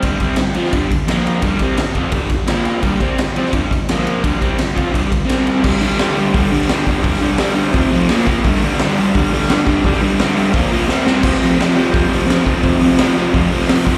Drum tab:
CC |----------------|----------------|----------------|----------------|
RD |x-x-x-x-x-x-x-x-|x-x-x-x-x-x-x-x-|x-x-x-x-x-x-x-x-|x-x-x-x-x-x-x-x-|
HH |----------------|----------------|----------------|----------------|
SD |----o--o----o---|----o-------o---|----o--o----o---|----o-------o---|
BD |o-o-----o-o-----|o-o---o-o-o-----|o-o-----o-o-----|o-o---o-o-o-----|

CC |x---------------|----------------|----------------|----------------|
RD |----------------|----------------|----------------|----------------|
HH |--o-o-o-o-o-o-o-|o-o-o-o-o-o-o-o-|o-o-o-o-o-o-o-o-|o-o-o-o-o-o-----|
SD |----o------oo---|-o--o-------o---|-o--o------oo---|-o--o-------o-o-|
BD |o-------o-----o-|o-------o-----o-|o-------o-----o-|o-------o-------|

CC |x---------------|----------------|
RD |----------------|----------------|
HH |--o-o-o-o-o-o-o-|o-o-o-o-o-o-o-o-|
SD |-o--o-------o---|----o------oo---|
BD |o-------o-----o-|o-------o-----o-|